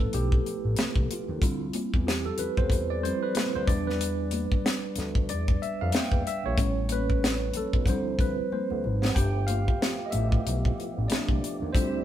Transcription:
Already playing: F3 A3 B3 E4 A4 B4
0.13 B1 G4, closed hi-hat, muted conga, low conga
0.32 kick
0.46 closed hi-hat, muted conga
0.65 A1
0.76 C2, snare, closed hi-hat, high conga
0.96 C2, kick, high conga
1.11 F4, closed hi-hat, muted conga
1.28 D#2, low conga
1.42 D2 G3 C4 E4 F4, kick, closed hi-hat
1.73 closed hi-hat, muted conga, high conga
1.94 E2, kick
2.07 G4, snare, closed hi-hat
2.25 A4
2.38 E2 B4, closed hi-hat, muted conga, low conga
2.57 E2 C5, kick
2.70 kick, closed hi-hat, low conga
2.90 D5
3.03 F3 G3 C4 E4 C5, closed hi-hat, muted conga
3.23 B4
3.35 snare, closed hi-hat, muted conga, high conga
3.54 D2 C5, high conga
3.67 E2 G3 B3 D4 D5, kick, closed hi-hat
3.86 B4, snare, low conga
4.01 closed hi-hat
4.31 closed hi-hat, high conga
4.52 kick
4.65 snare, closed hi-hat, muted conga
4.96 D2, snare, closed hi-hat, muted conga, low conga
5.15 kick
5.29 E2 D5, closed hi-hat, muted conga, low conga
5.48 kick
5.62 E5, closed hi-hat, muted conga
5.81 F2 F5
5.92 E2 G5, snare, closed hi-hat, muted conga, high conga
6.12 E2, kick, high conga
6.26 E5, closed hi-hat, muted conga
6.44 A#1 C#5, low conga
6.57 A1 G3 B3 C#4, kick, closed hi-hat
6.89 B4, closed hi-hat, high conga
7.10 kick
7.24 snare, closed hi-hat
7.54 B1 A4, closed hi-hat, muted conga, high conga, low conga
7.73 B1, kick
7.86 D2 F3 G3 C4 E4 C5, kick, closed hi-hat, muted conga, low conga
8.19 B4, kick, closed hi-hat, muted conga
8.52 C5, muted conga, high conga
8.70 D2, high conga
8.84 G#1, muted conga
9.02 snare, low conga
9.09 F#5
9.15 G1 F3 A3 B3 G4 G5, kick, closed hi-hat, muted conga
9.47 F4 F5, closed hi-hat, high conga
9.68 kick
9.82 snare, closed hi-hat
10.06 D#5
10.11 A1 F3 A3 B3 E4 E5, closed hi-hat, low conga
10.32 kick
10.45 B1, closed hi-hat, muted conga
10.65 kick
10.78 closed hi-hat, muted conga
10.98 A1
11.08 C2 D4 D5, snare, closed hi-hat, muted conga, high conga
11.29 C2, kick, high conga
11.43 closed hi-hat, muted conga
11.60 D#2, low conga
11.73 D2 G3 C4 E4 F4 G4 C5 E5, kick, closed hi-hat

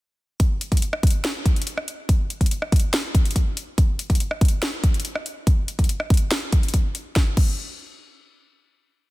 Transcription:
0.40 kick, closed hi-hat
0.61 closed hi-hat
0.72 kick, closed hi-hat
0.77 closed hi-hat
0.82 closed hi-hat
0.93 cross-stick
1.03 kick, closed hi-hat
1.07 closed hi-hat
1.10 closed hi-hat
1.25 snare, closed hi-hat
1.46 kick, closed hi-hat
1.56 closed hi-hat
1.62 closed hi-hat
1.67 closed hi-hat
1.77 cross-stick
1.88 closed hi-hat
2.09 kick, closed hi-hat
2.30 closed hi-hat
2.41 kick, closed hi-hat
2.46 closed hi-hat
2.51 closed hi-hat
2.62 cross-stick
2.72 kick, closed hi-hat
2.76 closed hi-hat
2.80 closed hi-hat
2.94 snare, closed hi-hat
3.15 kick, closed hi-hat
3.25 closed hi-hat
3.31 closed hi-hat
3.36 kick, closed hi-hat
3.57 closed hi-hat
3.78 kick, closed hi-hat
3.99 closed hi-hat
4.10 kick, closed hi-hat
4.15 closed hi-hat
4.20 closed hi-hat
4.31 cross-stick
4.41 kick, closed hi-hat
4.45 closed hi-hat
4.48 closed hi-hat
4.63 snare, closed hi-hat
4.84 kick, closed hi-hat
4.94 closed hi-hat
5.00 closed hi-hat
5.05 closed hi-hat
5.15 cross-stick
5.26 closed hi-hat
5.47 kick, closed hi-hat
5.68 closed hi-hat
5.79 kick, closed hi-hat
5.84 closed hi-hat
5.89 closed hi-hat
6.00 cross-stick
6.10 kick, closed hi-hat
6.14 closed hi-hat
6.17 closed hi-hat
6.31 snare, closed hi-hat
6.52 kick, closed hi-hat
6.63 closed hi-hat
6.68 closed hi-hat
6.74 kick, closed hi-hat
6.95 closed hi-hat
7.16 kick, snare
7.37 kick, crash

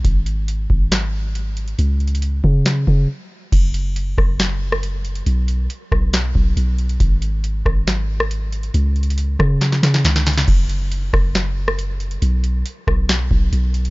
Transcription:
0.04 G#1, kick, closed hi-hat
0.26 closed hi-hat
0.48 closed hi-hat
0.70 G#1, kick
0.92 snare, closed hi-hat
1.35 closed hi-hat
1.57 closed hi-hat
1.68 closed hi-hat
1.78 C#2, closed hi-hat
2.00 closed hi-hat
2.08 closed hi-hat
2.15 closed hi-hat
2.22 closed hi-hat
2.44 C#3, kick
2.66 snare, closed hi-hat
2.87 C#3, kick
3.52 F#1, kick, closed hi-hat, crash
3.74 closed hi-hat
3.96 closed hi-hat
4.18 F#1, kick, cross-stick
4.39 snare, closed hi-hat
4.72 cross-stick
4.83 closed hi-hat
5.05 closed hi-hat
5.15 closed hi-hat
5.26 B1, closed hi-hat
5.48 closed hi-hat
5.70 closed hi-hat
5.92 B1, kick, cross-stick
6.13 snare, closed hi-hat
6.35 B1, kick
6.57 B1, closed hi-hat
6.79 closed hi-hat
6.89 closed hi-hat
7.00 G#1, kick, closed hi-hat
7.22 closed hi-hat
7.44 closed hi-hat
7.66 G#1, kick, cross-stick
7.87 snare, closed hi-hat
8.20 cross-stick
8.31 closed hi-hat
8.52 closed hi-hat
8.63 closed hi-hat
8.74 C#2, closed hi-hat
8.96 closed hi-hat
9.03 closed hi-hat
9.10 closed hi-hat
9.18 closed hi-hat
9.39 C#3, kick, cross-stick
9.61 snare, closed hi-hat
9.72 snare
9.83 C#3, snare
9.94 snare
10.04 C#2, snare, closed hi-hat
10.16 snare
10.26 snare, closed hi-hat
10.33 closed hi-hat
10.38 snare, closed hi-hat
10.48 F#1, kick, crash
10.69 closed hi-hat
10.91 closed hi-hat
11.13 F#1, kick, cross-stick
11.35 snare, closed hi-hat
11.68 cross-stick
11.79 closed hi-hat
12.00 closed hi-hat
12.11 closed hi-hat
12.22 B1, closed hi-hat
12.44 closed hi-hat
12.66 closed hi-hat
12.87 B1, kick, cross-stick
13.09 snare, closed hi-hat
13.31 B1, kick
13.52 B1, closed hi-hat
13.74 closed hi-hat
13.85 closed hi-hat

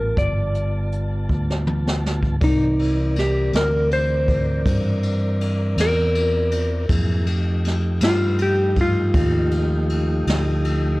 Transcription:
Already playing: A1 G3 B3 F4 A#4 A5
0.17 G1 D5, kick, closed hi-hat
0.55 closed hi-hat
0.92 closed hi-hat
1.29 D2, kick
1.51 snare
1.67 mid tom
1.88 snare
2.06 snare
2.23 kick
2.40 C2 E3 C4 D#4 A#4 D5, kick, ride
2.79 ride
3.16 G4, snare, ride
3.53 D2 A#4, snare, ride
3.91 C5, ride
4.28 kick, ride
4.66 G2, kick, ride
5.03 ride
5.41 ride
5.77 E2, snare, ride
5.81 A#4
6.15 ride
6.52 ride
6.89 F2 F#3 A#3 E4 G#4, kick, ride
7.26 F3 A3 D#4 G4, ride
7.65 snare, ride
8.01 G2 F4, snare, ride
8.39 G4, ride
8.76 kick, ride
8.81 F4
9.14 D#2, kick, ride
9.51 ride
9.89 ride
10.27 D2, snare, ride
10.65 ride

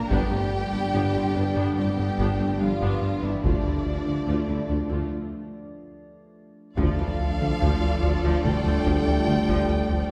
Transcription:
Already playing: A#3 A#5
0.10 G1 G2 D3 G3 B3 D4 G4 D5 G5, taiko
0.31 G1 G2 A3 C4 G4
0.53 G2
0.73 G1 G3 B3 D4
0.94 G1 G2 G3 B3 D4
1.15 G1 G2 A3 C4 G4
1.35 G1 G2 B3 D4 G4
1.56 G1 G2 G3 B3 D4
1.77 G1 G3 A3 C4 D4 G4 G5
1.98 G1 G2 B3 D4
2.18 G1 G2 G3 B3 D4, taiko
2.39 G1 G2 A3 B3 C4
2.60 G1 F3 G3 B3 D4 F4 F5
2.80 G1 G2 G3 B3 D4, taiko
3.02 G2
3.22 G1 G2 E3 B3 D4 E4 E5
3.43 D2 D3 F3 A3 D4 F4 D5, taiko
3.64 D2 G3 D4 E4
3.86 D2
4.06 D2 D3 F3 A3 D4
4.27 D2 D3 A3 F4
4.48 D2 G3 D4 E4
4.69 D2 A3 D4 F4
4.90 D2 D3 A3 F4
6.76 D2 D3 F3 A3 D4 F4 A4 D5 F5, taiko, sub drop
6.99 D2 E3 D4
7.20 D2
7.40 D2 D3 A3
7.61 D2 D3 F3
7.82 D2 E3 D4
8.02 D2 F3 D4
8.23 D2 D3 F3
8.44 D2 D3 E3 G3 A3 G5, taiko mid
8.65 D2 F3
8.86 D2 D3 F3, taiko
9.07 D2 E3 F3
9.27 D2 D3 F3 A3
9.49 D2 D3 F3, taiko
9.69 D2
9.90 D2 F3

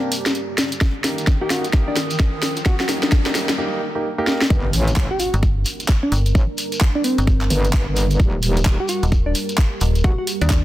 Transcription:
Already playing: G3 A#3 C4 D4 G4 A#4 D5 A#5, riser
0.12 open hi-hat, shekere
0.26 snare, closed hi-hat, shekere
0.35 closed hi-hat, shekere
0.58 snare, open hi-hat, shekere
0.72 closed hi-hat, shekere
0.81 D#3, kick, snare, closed hi-hat
0.96 A#4 G5
1.04 A#3 D#4 G4, snare, open hi-hat, shekere
1.18 closed hi-hat, shekere
1.27 kick, snare, closed hi-hat
1.37 D#6
1.41 A#3 D#4 G4
1.50 F#4, snare, open hi-hat, shekere
1.64 closed hi-hat, shekere
1.73 A#3 D#4 G4, kick, snare, closed hi-hat
1.88 D4
1.96 snare, open hi-hat, shekere
2.10 closed hi-hat, shekere
2.20 kick, snare, closed hi-hat
2.43 snare, open hi-hat, shekere
2.56 closed hi-hat, shekere
2.66 F#4, kick, snare, closed hi-hat
2.80 F#4, snare
2.89 A#3 D#4 G4, snare, open hi-hat, shekere
3.02 D4, snare, closed hi-hat, shekere
3.12 kick, snare, closed hi-hat, shekere
3.26 A#3 D#4 G4, snare
3.35 snare, open hi-hat, shekere
3.49 snare, closed hi-hat, shekere
3.58 A#3 D#4 G4
3.95 A#3 D#4 G4
4.18 A#3 D#4 G4
4.27 snare
4.41 snare
4.50 G1 G3 D4 A#4, kick, closed hi-hat, impact, shekere
4.73 A1, open hi-hat, shekere
4.88 closed hi-hat, shekere
4.96 kick, clap
5.11 G4
5.20 F#4, open hi-hat, shekere
5.34 G1, closed hi-hat, shekere
5.43 kick, closed hi-hat, shekere
5.65 open hi-hat, shekere
5.80 closed hi-hat, shekere
5.88 kick, clap, closed hi-hat
6.03 D4
6.12 G1, open hi-hat, shekere
6.26 closed hi-hat, shekere
6.35 A1, kick, closed hi-hat, shekere
6.58 open hi-hat, shekere
6.72 closed hi-hat, shekere
6.81 kick, clap, closed hi-hat
6.95 D4
7.04 C4, open hi-hat, shekere
7.18 G1, closed hi-hat, shekere
7.27 kick, closed hi-hat, shekere
7.41 clap
7.50 G1, open hi-hat, shekere
7.65 closed hi-hat, shekere
7.73 kick, clap, closed hi-hat
7.88 G1
7.96 open hi-hat, shekere
8.10 closed hi-hat, shekere
8.20 D#1 G4 A#4, kick, closed hi-hat, shekere
8.43 D#1, open hi-hat, shekere
8.57 closed hi-hat, shekere
8.65 kick, clap
8.80 G4
8.88 F#4, open hi-hat, shekere
9.03 D#1, closed hi-hat, shekere
9.12 kick, closed hi-hat, shekere
9.26 D4
9.35 open hi-hat, shekere
9.49 closed hi-hat, shekere
9.58 kick, clap, closed hi-hat
9.81 D#1, open hi-hat, shekere
9.95 closed hi-hat, shekere
10.04 D#1 F#4 C5, kick, closed hi-hat
10.18 F#4
10.27 open hi-hat, shekere
10.41 D#2 D4, closed hi-hat, shekere
10.50 kick, clap, closed hi-hat, shekere

